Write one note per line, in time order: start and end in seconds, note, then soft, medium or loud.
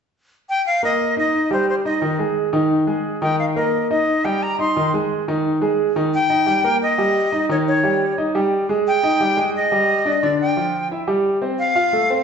0.49 0.65 G5 loud
0.67 0.82 F5 loud
0.83 1.11 A#3 medium
0.83 1.11 A#4 medium
0.83 1.15 D#5 loud
1.17 1.45 D#4 medium
1.17 1.45 D#5 medium
1.17 1.50 D#5 medium
1.50 1.79 G3 medium
1.50 1.79 G4 medium
1.50 1.68 C5 medium
1.70 1.76 C5 medium
1.85 1.99 D#4 medium
1.85 1.99 D#5 medium
1.85 2.17 D#5 medium
2.02 2.16 D#3 medium
2.02 2.16 D#4 medium
2.19 2.47 G#3 medium
2.19 2.47 G#4 medium
2.53 2.81 D#3 medium
2.53 2.81 D#4 medium
2.87 3.15 G#3 medium
2.87 3.16 G#4 medium
3.22 3.50 D#3 medium
3.22 3.50 D#4 medium
3.22 3.38 G5 medium
3.39 3.45 F5 medium
3.56 3.84 A#3 medium
3.56 3.84 A#4 medium
3.56 3.88 D#5 medium
3.91 4.18 D#4 medium
3.91 4.19 D#5 medium
3.91 4.26 D#5 medium
4.25 4.53 G3 medium
4.25 4.53 G4 medium
4.25 4.44 G5 medium
4.43 4.59 A#5 medium
4.59 4.73 D#4 medium
4.59 4.73 D#5 medium
4.59 4.91 C6 loud
4.77 4.90 D#3 medium
4.77 4.90 D#4 medium
4.94 5.21 G#3 medium
4.94 5.22 G#4 medium
5.28 5.56 D#3 medium
5.28 5.56 D#4 medium
5.61 5.89 G#3 medium
5.61 5.90 G#4 medium
5.96 6.10 D#3 medium
5.96 6.10 D#4 medium
6.14 6.78 G5 loud
6.30 6.44 D#4 medium
6.30 6.44 D#5 medium
6.46 6.60 G3 medium
6.46 6.61 G4 medium
6.64 6.92 A#3 medium
6.64 6.92 A#4 medium
6.83 7.46 D#5 loud
6.98 7.26 G3 medium
6.98 7.26 G4 medium
7.32 7.46 D#4 medium
7.32 7.46 D#5 medium
7.49 7.77 D#3 medium
7.49 7.77 D#4 medium
7.49 7.57 C#5 medium
7.68 8.15 C#5 medium
7.83 8.11 G3 medium
7.83 8.12 G4 medium
8.18 8.32 D#4 medium
8.18 8.32 D#5 medium
8.35 8.63 G3 medium
8.35 8.63 G4 medium
8.69 8.97 G#3 medium
8.69 8.97 G#4 medium
8.87 9.51 G5 loud
9.03 9.17 D#4 medium
9.03 9.17 D#5 medium
9.20 9.34 G3 medium
9.20 9.34 G4 medium
9.37 9.65 G#3 medium
9.37 9.65 G#4 medium
9.56 10.25 D#5 medium
9.72 9.99 G3 medium
9.72 10.00 G4 medium
10.05 10.19 D4 medium
10.05 10.20 D5 medium
10.23 10.51 D3 medium
10.23 10.51 D4 medium
10.23 10.40 D5 medium
10.41 10.88 G5 medium
10.57 10.85 F3 medium
10.57 10.85 F4 medium
10.91 11.05 E4 medium
10.91 11.05 E5 medium
11.07 11.36 G3 medium
11.07 11.36 G4 medium
11.42 11.70 C4 medium
11.42 11.70 C5 medium
11.59 12.23 F5 loud
11.75 11.90 F4 medium
11.75 11.90 F5 medium
11.93 12.07 A3 medium
11.93 12.07 A4 medium
12.10 12.23 C4 medium
12.10 12.23 C5 medium